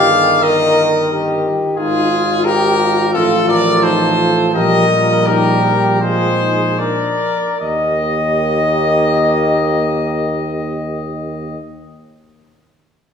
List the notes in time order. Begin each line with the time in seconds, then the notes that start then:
Already playing: G1 D#3 G4 D5 F5
0.10 G#4
0.43 A#4 D#5
1.11 G4
1.77 G#1 D#4 F4 G#4
2.12 F4
2.45 G4 A#4
2.80 F4
3.13 A1 F3 F4 A4
3.48 A#4 D5
3.83 D#4 A4 C5
4.18 F4
4.54 A#1 G3 G4 A#4 D#5
4.90 F4
5.26 D#4 G4 A#4
5.64 G4
6.01 G#3 F4 G#4 C5
6.40 D#4
6.79 D4 A#4 D5
7.60 D#2 A#3 G4 D#5